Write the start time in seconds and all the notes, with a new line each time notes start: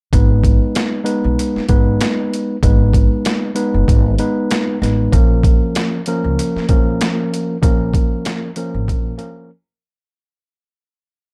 0.13 G#1 G#3 B3 D#4 B4, kick, closed hi-hat
0.44 kick, closed hi-hat
0.75 snare, closed hi-hat
1.04 G#3 B3 D#4 B4, closed hi-hat
1.24 B1
1.39 closed hi-hat
1.56 muted upright bass stroke, snare
1.68 G#1 G#3 B3 D#4 B4, kick, closed hi-hat
2.01 snare, closed hi-hat
2.34 closed hi-hat
2.63 G#1 G#3 B3 D#4 B4, kick, closed hi-hat
2.93 kick, closed hi-hat
3.25 snare, closed hi-hat
3.55 G#3 B3 D#4 B4, closed hi-hat
3.74 F#1
3.88 G#1, kick, closed hi-hat
4.18 G#3 B3 D#4 B4, closed hi-hat
4.51 snare, closed hi-hat
4.82 A1 G#3 B3 D#4 B4, snare, closed hi-hat
5.12 A#1 F3 A#3 C#4 A#4, kick, closed hi-hat
5.43 kick, closed hi-hat
5.75 snare, closed hi-hat
6.06 F3 A#3 C#4 A#4, closed hi-hat
6.24 C#2
6.39 closed hi-hat
6.55 muted upright bass stroke, snare
6.69 A#1 F3 A#3 C#4 A#4, kick, closed hi-hat
7.01 snare, closed hi-hat
7.34 closed hi-hat
7.62 A#1 F3 A#3 C#4 A#4, kick, closed hi-hat
7.94 kick, closed hi-hat
8.25 snare, closed hi-hat
8.56 F3 A#3 C#4 A#4, closed hi-hat
8.74 G#1
8.88 A#1, kick, closed hi-hat
9.17 F3 A#3 C#4 A#4, closed hi-hat